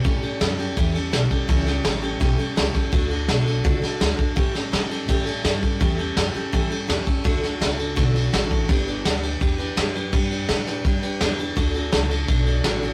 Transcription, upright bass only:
X:1
M:4/4
L:1/8
Q:1/4=167
K:D
V:1 name="Upright bass" clef=bass
A,,2 F,,2 E,,2 B,,, z | C,,2 A,,,2 B,,, z C,, z | D,,2 B,,,2 C,, z D,, z | A,,2 ^G,,2 A,,2 =G,,2 |
E,,2 F,, z G,,2 E,, z | D,,2 C,,2 B,,,2 A,,,2 | G,,,2 D,,2 E,,2 F,,2 | G,,2 A,,2 G,,2 E,,2 |
D,,2 C,,2 B,,,2 A,,,2 |]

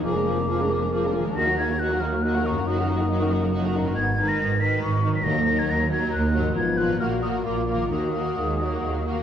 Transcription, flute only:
X:1
M:3/4
L:1/16
Q:1/4=138
K:Ebm
V:1 name="Flute"
=d'8- d'2 z2 | b'2 a'2 g'2 f'2 g'2 d'2 | e'8- e'2 z2 | a'3 b'3 c''2 d'3 c'' |
b'3 a' b'2 a'2 g'4 | a'2 g'2 f'2 e'2 =d'3 d' | e'8- e'2 z2 |]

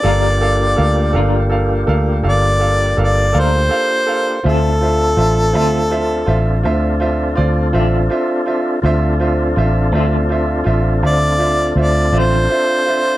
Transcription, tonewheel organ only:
X:1
M:12/8
L:1/8
Q:3/8=55
K:Dm
V:1 name="Tonewheel organ"
[B,DFG]12 | [CDFA]12 | [CDFA]12 |]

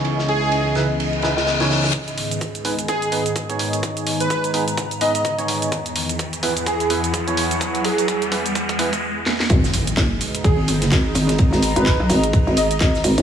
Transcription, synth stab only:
X:1
M:4/4
L:1/16
Q:"Swing 16ths" 1/4=127
K:G#m
V:1 name="Synth stab"
[C,DEGc]6 [C,DEGB] z3 [C,DEGB] z2 [C,DEGc]3 | z6 [B,DGB] z3 [B,DGB] z2 [B,DGc]3- | [B,DGc]6 [B,DGB] z3 [B,DGB] z2 [B,DGc]3 | z6 [B,EGB] z3 [B,EGB] z2 [B,EGc]3- |
[B,EGc]6 [B,EGB] z3 [B,EGB] z4 z | z16 | z16 |]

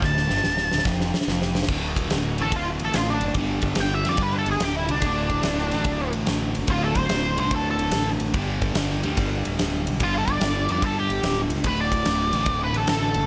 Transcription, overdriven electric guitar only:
X:1
M:4/4
L:1/8
Q:"Swing" 1/4=144
K:G
V:1 name="Overdriven electric guitar" clef=bass
D,, G,, D,, D,, =F,, z F,,2 | [D,,A,,D,]3 [D,,A,,D,]4- [D,,A,,D,] | [G,,D,G,]3 [G,,D,G,]4- [G,,D,G,] | [D,,A,,D,]3 [D,,A,,D,]4- [D,,A,,D,] |
[D,,A,,D,]3 [D,,A,,D,]4- [D,,A,,D,] | [G,,D,G,]3 [G,,D,G,]4- [G,,D,G,] | [G,,D,G,]3 [G,,D,G,]4- [G,,D,G,] | [D,,A,,D,]3 [D,,A,,D,]4- [D,,A,,D,] |]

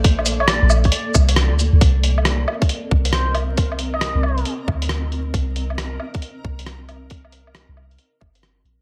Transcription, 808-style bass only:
X:1
M:4/4
L:1/16
Q:"Swing 16ths" 1/4=136
K:Cdor
V:1 name="808-style bass" clef=bass
B,,,4- B,,, B,,,3 z2 C,,3 D,,2 D,, | z8 z2 C,,6- | C,,4- C,, C,,3 z2 D,,6 | C,,6 z4 C,,6- |
C,,4- C,, C,,3 z2 G,,,4 B,,,2 |]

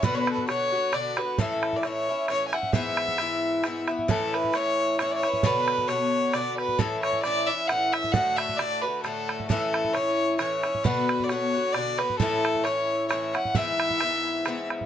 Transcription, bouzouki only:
X:1
M:3/4
L:1/8
Q:"Swing" 1/4=133
K:A
V:1 name="Bouzouki"
[B,,D,B,F]2 [B,,D,B,F] [D,B,F] [B,,D,B,F] [D,B,F] | [A,,E,CE]2 [A,,E,CE] [E,CE] [A,,E,CE] [E,CE] | [G,,E,B,E]2 [G,,E,B,E]2 [G,,E,B,E] [E,B,E] | [A,,E,CE]2 [A,,E,CE]2 [A,,E,CE] [E,CE] |
[B,,D,B,F]2 [B,,D,B,F]2 [B,,D,B,F]2 | [A,,E,CE]2 [A,,E,CE] [E,CE] [A,,E,CE]2 | [A,,D,A,F]2 [A,,D,A,F] [D,A,F] [A,,D,A,F]2 | [A,,E,CE]2 [A,,E,CE]2 [A,,E,CE] [E,CE] |
[B,,D,B,F]2 [B,,D,B,F] [D,B,F] [B,,D,B,F] [D,B,F] | [A,,E,CE]2 [A,,E,CE]2 [A,,E,CE] [E,CE] | [G,,E,B,E]2 [G,,E,B,E]2 [G,,E,B,E]2 |]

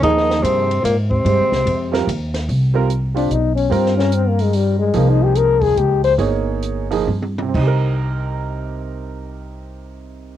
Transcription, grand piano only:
X:1
M:3/4
L:1/8
Q:"Swing" 1/4=147
K:Cphr
V:1 name="Grand piano"
[F,B,EA]3 z3 | [A,CGc]3 [G,CFB] z2 | z [G,CFB] z [G,CFG] z2 | [G,CFB]4- [G,CFB] z |
[F,B,EA]4- [F,B,EA] z | [B,EAd]3 [F,B,EA] z2 | [C,CEGB]6- | [C,CEGB]6 |]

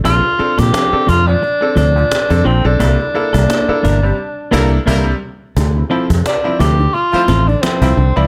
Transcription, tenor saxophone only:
X:1
M:4/4
L:1/16
Q:"Swing 16ths" 1/4=87
K:Dm
V:1 name="Tenor saxophone"
F3 G3 F D3 D4 C D- | D12 z4 | z4 D2 G2 F3 D C3 D |]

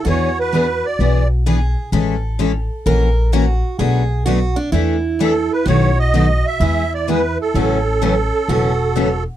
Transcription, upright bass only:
X:1
M:4/4
L:1/8
Q:"Swing" 1/4=128
K:A
V:1 name="Upright bass" clef=bass
E,,4 B,,,4 | A,,,4 ^A,,,4 | B,,,4 E,,4 | B,,,4 E,,4 |
A,,,4 E,,,4 |]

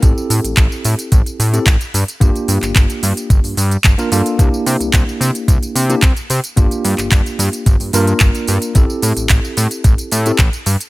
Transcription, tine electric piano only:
X:1
M:4/4
L:1/16
Q:1/4=110
K:Aphr
V:1 name="Tine electric piano"
[CEGA]8- [CEGA]3 [CEGA] z4 | [B,DFG]8- [B,DFG]2 z3 [B,DFB] [B,DFA]2 | [B,DEG]8- [B,DEG]3 [B,DEG] z4 | [B,DFG]8- [B,DFG]2 [B,DFB]6 |
[CEGA]8- [CEGA]3 [CEGA] z4 |]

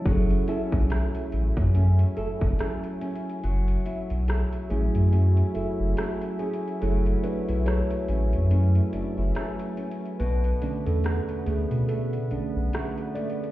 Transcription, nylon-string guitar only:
X:1
M:4/4
L:1/16
Q:"Swing 16ths" 1/4=71
K:F#m
V:1 name="Nylon-string guitar"
F,2 [CEA]2 E4 C2 A2 [CEA]2 C2 | F,2 E2 A2 C2 C2 E2 [CEA]2 C2 | F,2 D E A2 C2 C2 D E [CEA]2 C2 | B,,2 D2 F2 A,2 A,2 D2 [A,DF]2 A,2 |]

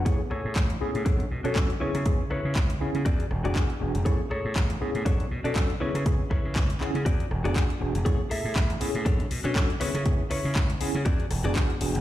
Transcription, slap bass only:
X:1
M:4/4
L:1/16
Q:"Swing 16ths" 1/4=120
K:A
V:1 name="Slap bass" clef=bass
A,,, z A,, A,, A,,, z A,, A,, B,,, z B,, B,, B,,, z C, C, | C,, z C, C, C,, z C, C, E,, z E,,, E,,, E,, z E,,, E,,, | A,,, z A,, A,, A,,, z A,, A,, B,,, z B,, B,, B,,, z C, C, | C,, z C, C, C,, z C, C, E,, z E,,, E,,, z2 E,,, E,,, |
A,,, z A,, A,, A,,, z A,, A,, B,,, z B,, B,, B,,, z C, C, | C,, z C, C, C,, z C, C, E,, z E,,, E,,, z2 E,,, E,,, |]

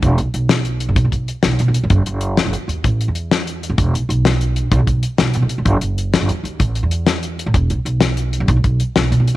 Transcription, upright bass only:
X:1
M:12/8
L:1/16
Q:3/8=128
K:E
V:1 name="Upright bass" clef=bass
E,,,2 B,,, z B,,,6- B,,, G,,, B,,, G,,, B,,,2 z2 B,,,2 B,, B,,, z G,,, | F,,,2 z4 z F,,, D,, z D,,2 A,,,3 E,,8 =F,,, | E,,,2 B,,, z B,,,6- B,,, ^A,,, B,,, G,,, B,,,2 z2 B,,,2 B,, B,,, z G,,, | F,,,2 F,,,4- F,,, F,,, D,, z D,,2 A,,,3 E,,8 A,, |
E,,,2 B,,, z B,,,6- B,,, G,,, B,,, G,,, B,,,2 z2 B,,,2 B,, B,,, z2 |]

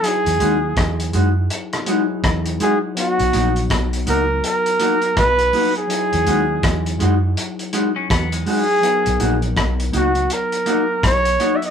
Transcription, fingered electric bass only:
X:1
M:4/4
L:1/16
Q:"Swing 16ths" 1/4=82
K:B
V:1 name="Fingered electric bass" clef=bass
z E,, D,,2 E,,2 F,,2 z4 E,,2 z2 | z B,,, A,,,2 B,,,2 C,,2 z4 B,,,2 z2 | z E,, D,,2 E,,2 F,,2 z4 E,,2 z2 | z B,,, A,,,2 B,,,2 C,,2 z4 B,,,2 z2 |]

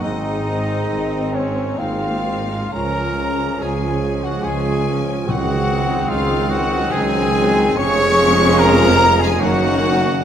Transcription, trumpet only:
X:1
M:3/4
L:1/16
Q:1/4=71
K:Db
V:1 name="Trumpet"
E6 D2 F4 | B4 A3 G A3 z | G4 F2 G2 A4 | d4 B3 A G4 |]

